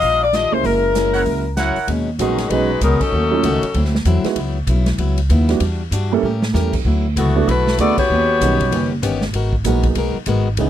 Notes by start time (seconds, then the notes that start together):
Already playing: D#4 G4 D#5 F5
0.02 A#1 D#3 G3 D4 F4, open hi-hat
0.23 D5
0.33 D#3 G3 D4 F4 D#5, snare, closed hi-hat
0.52 C#2 G#3 A#3 C#4 E4 C5
0.64 F#1 F#3 C#4 E4 A#4, open hi-hat
0.94 F#3 G#3 A#3 C#4 E4 A#4, snare, closed hi-hat
1.14 E4 A#4 C#5 F#5, open hi-hat
1.25 C#2 F#3 C#4 E4 A#4, open hi-hat
1.57 F#3 C#4 E4 A#4 C#5 F#5, snare, closed hi-hat
1.76 muted upright bass stroke, open hi-hat
1.88 D#2 B2 G#3 C#4 D#4, ride
2.19 A#1 B2 D#3 F#3 G#3 B3 C#4 D#4 F#4, hi-hat pedal, ride
2.38 snare, ride
2.50 B1 B2 F#3 G#3 B3 C#4 D#4 F#4 B4, ride
2.81 C#2 B2 F#3 G#3 B3 C#4 D#4 A#4, hi-hat pedal, ride
3.00 F#3 C#4 D#4 A4, muted upright bass stroke, kick, crash
3.12 D#2 D#3 A3 C#4 F#4
3.31 F#3 A3 C#4 D#4 F4
3.44 C#2 D#3 A3 C#4 F#4, hi-hat pedal, ride
3.63 muted upright bass stroke, ride
3.74 D2 D3 F#3 C4 E4, ride
3.85 snare
3.95 snare
4.05 E2 D3 F#3 C4 E4, hi-hat pedal, ride
4.24 G#3 B3 D#4 E4 F#4, muted upright bass stroke, snare, ride
4.36 C#2 C#3 F#3 B3 E4, ride
4.67 B1 C#3 F#3 B3 E4, hi-hat pedal, ride
4.86 snare, ride
4.98 C#2 C#3 F#3 B3 E4, ride
5.18 ride
5.29 D#2 C#3 F#3 B3 E4, hi-hat pedal, ride
5.49 G3 B3 D4 E4 F#4, snare, ride
5.60 E2 E3 G3 D4 F#4, ride
5.91 G2 E3 G3 D4 F#4, hi-hat pedal, ride
6.12 G3 A#3 C#4 E4 A4
6.23 A2 A3 C#4 G4 A#4
6.42 snare
6.53 E2 G3 A3 A#3 C#4 E4 G4 A4 A#4, snare, hi-hat pedal
6.73 kick, crash
6.85 D2 D3 F#3 B3 E4
7.16 C#2 D3 E3 F#3 A3 B3 E4 F#4, hi-hat pedal, ride
7.36 A3 B3 D4 E4 F#4
7.47 B1 D3 F#3 A3 B3 E4 F#4 B4, ride
7.67 snare
7.78 D2 D3 F#3 A3 B3 D4 E4 F#4 G#4 A4 D5, hi-hat pedal, ride
7.98 B3 F#4 G4 C#5, muted upright bass stroke, kick, crash
8.10 D#2 D#3 B3 C#4 G4
8.41 B1 D#3 G3 B3 C#4 D#4 G4 F#5, hi-hat pedal, ride
8.60 kick, ride
8.71 F#1 D#3 B3 C#4 G4, ride
9.02 G1 D#3 B3 C#4 G4, hi-hat pedal, ride
9.21 snare
9.33 G#1 G#3 B3 F#4 A#4, ride
9.53 kick
9.64 A#1 F#3 G#3 A#3 B3 D#4 F#4 G#4 A#4, hi-hat pedal, ride
9.83 kick, ride
9.95 B1 G#3 B3 F#4 A#4, ride
10.15 muted upright bass stroke
10.26 G#1 G#3 B3 F#4 A#4, hi-hat pedal, ride
10.57 C#2 C#3 E3 B3 C#4 D#4 G#4, ride